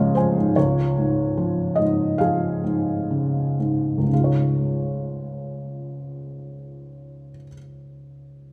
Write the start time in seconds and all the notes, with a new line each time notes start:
Already playing: C#2 G#2 C#3 F3 G#3 C#4 F4 G#4 C#5 D#5 F5
0.15 F3 C5 G#5
0.38 G#2
0.56 C#2 F4 C#5
0.98 G#2
1.37 F3
1.76 G#2 D#5
2.18 F3 G#4 F5
2.64 G#2
3.11 C#3
3.59 G#2
3.98 C#2
4.03 G#2
4.08 C#3
4.14 G#3 F5
4.19 F4
4.24 C#5